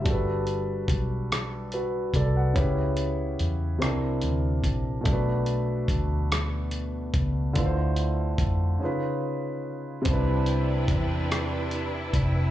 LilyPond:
<<
  \new Staff \with { instrumentName = "Grand piano" } { \time 6/8 \key g \major \tempo 4. = 48 << { r2 <fis' b'>8 <a' d''>16 <b' fis''>16~ | <b' fis''>16 r2 r8. | r2. | r2. |
r2. | } \\ { <g d' fis' a' b'>2. | <cis cis' e' g' b'>4. <c c' d' e' bes'>4. | <b, a d' fis' b'>2. | <d a e' f' b' c''>4. <cis cis' dis' eis' b'>4. |
<c c' d' e' b'>2. | } >> }
  \new Staff \with { instrumentName = "String section" } { \time 6/8 \key g \major r2. | r2. | r2. | r2. |
<c d' e' b'>2. | }
  \new Staff \with { instrumentName = "Fingered electric bass" } { \clef bass \time 6/8 \key g \major g,,4 b,,4. c,8 | cis,4 e,8 c,8 d,8 bes,,8 | b,,4 d,4. cis,8 | d,4 f,8 r4. |
c,4 e,4. f,,8 | }
  \new DrumStaff \with { instrumentName = "Drums" } \drummode { \time 6/8 <hh bd>8 hh8 <hh bd>8 <hh ss>8 hh8 <hh bd>8 | <hh bd>8 hh8 hh8 <hh ss>8 hh8 <hh bd>8 | <hh bd>8 hh8 <hh bd>8 <hh ss>8 hh8 <hh bd>8 | <hh bd>8 hh8 <hh bd>8 r4. |
<hh bd>8 hh8 <hh bd>8 <hh ss>8 hh8 <hh bd>8 | }
>>